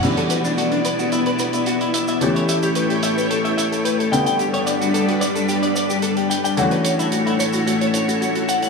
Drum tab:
CC |x---------------|----------------|----------------|----------------|
HH |xxxxxxxxxxxxxxxx|xxxxxxxxxxxxxxxx|xxxxxxxxxxxxxxxx|xxxxxxxxxxxxxxxx|
SH |x-xxx-xxx-xxx-xx|x-xxx-xxx-xxx-xx|x-xxx-xxx-xxx-xx|x-xxx-xxx-xxx-xx|